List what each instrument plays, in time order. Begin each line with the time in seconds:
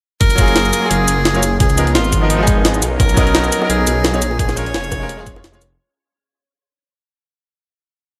0.21 detuned saw bass F#1, analog synth pad A#3 F4 G#4, tenor saxophone A#4, kick, closed hi-hat
0.30 closed hi-hat, shaker
0.35 grand piano F#3 A#3, kick, closed hi-hat, shaker
0.39 grand piano F4 G#4
0.48 closed hi-hat
0.56 snare, closed hi-hat
0.65 shaker
0.73 closed hi-hat, shaker
0.79 grand piano F#3 A#3
0.84 grand piano F4 G#4
0.90 detuned saw bass F#1, tenor saxophone G#4, closed hi-hat
1.08 detuned saw bass F#1, closed hi-hat, shaker
1.25 snare, closed hi-hat
1.33 grand piano F#3 A#3 F4 C#5, shaker
1.43 closed hi-hat, shaker
1.60 detuned saw bass C#2, analog synth pad B3 D#4 A#4, tenor saxophone G#4, kick, closed hi-hat
1.70 closed hi-hat, shaker
1.76 grand piano F3 B3 D#4 A#4, closed hi-hat, shaker
1.87 closed hi-hat
1.95 detuned saw bass G#1, tenor saxophone F4, snare, closed hi-hat
2.05 shaker
2.13 kick, closed hi-hat, shaker
2.20 grand piano F3 B3 D#4 A#4
2.30 tenor saxophone D#4, closed hi-hat
2.36 grand piano F3 B3
2.40 grand piano D#4 G#4
2.47 kick, closed hi-hat, shaker
2.65 snare, closed hi-hat
2.74 shaker
2.82 detuned saw bass B1, analog synth pad C#4 A#4, closed hi-hat, shaker
3.00 detuned saw bass B1, tenor saxophone A#4, kick, closed hi-hat, high bongo
3.09 closed hi-hat, shaker
3.14 grand piano F#3 B3, kick, closed hi-hat, high bongo, shaker
3.18 grand piano D#4 A#4
3.27 closed hi-hat
3.35 snare, closed hi-hat
3.44 high bongo, shaker
3.52 closed hi-hat, shaker
3.58 grand piano F#3 B3, high bongo
3.63 grand piano D#4 A#4
3.69 detuned saw bass B1, tenor saxophone G#4, closed hi-hat
3.87 detuned saw bass B1, closed hi-hat, high bongo, shaker
4.04 snare, closed hi-hat, high bongo
4.12 grand piano F#3 B3 D#4 C#5, shaker
4.22 detuned saw bass A#1, analog synth pad C#4 F4 G#4, closed hi-hat, shaker
4.31 high bongo
4.39 tenor saxophone G#4, kick, closed hi-hat
4.49 snare, closed hi-hat, high bongo, shaker
4.55 grand piano G#3 C#4 F4 A#4, tenor saxophone C#5, closed hi-hat, shaker
4.66 closed hi-hat
4.74 detuned saw bass F1, snare, closed hi-hat, high bongo
4.84 shaker
4.92 kick, closed hi-hat, high bongo, shaker
4.99 grand piano G#3 C#4 F4 A#4
5.09 closed hi-hat
5.17 grand piano G#3 C#4 F4 G#4, high bongo
5.25 grand piano G#3 C#4 F4 C#5, kick, closed hi-hat, shaker
5.34 grand piano G#3 C#4 F4 C#5, high bongo
5.44 snare, closed hi-hat
5.52 grand piano G#3 C#4 F4 C#5, shaker
5.61 detuned saw bass F1, closed hi-hat, high bongo, shaker